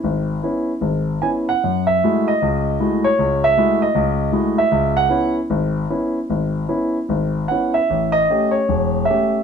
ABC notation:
X:1
M:4/4
L:1/8
Q:"Swing" 1/4=153
K:C#m
V:1 name="Grand piano"
z6 g f- | f e2 d4 c- | c e2 d4 e- | e f2 z4 z |
z6 f e- | e d2 c3 e2 |]
V:2 name="Grand piano"
G,,,2 [B,CE] z G,,,2 [B,CE] z | F,,2 [G,A,EF] z C,,2 [G,A,EF] z | C,,2 [G,A,EF] z C,,2 [G,A,EF] z | C,,2 [B,CE] z G,,,2 [B,CE] z |
G,,,2 [B,CE] z G,,,2 [B,CE] z | A,,,2 [A,C=G] z E,,,2 [A,CG] z |]